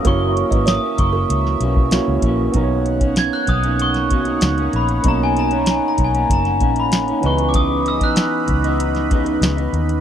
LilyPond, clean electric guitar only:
\new Staff \with { instrumentName = "Clean electric guitar" } { \time 4/4 \key b \major \tempo 4 = 96 <fis, e ais cis'>8. <e ais cis'>8 <e ais cis'>4~ <e ais cis'>16 <fis, e ais cis'>8 <fis, e ais cis'>8 <fis, e ais cis'>8 | <b, dis ais cis'>8. <dis ais cis'>4 <dis ais cis'>8. <b, dis ais cis'>8. <dis ais cis'>8. | <b, dis ais cis'>8. <dis ais cis'>4 <dis ais cis'>8. <dis ais cis'>8. <dis ais cis'>16 <cis e b dis'>8~ | <cis e b dis'>8. <e b dis'>4 <e b dis'>8. <cis e b dis'>8. <b dis'>8. | }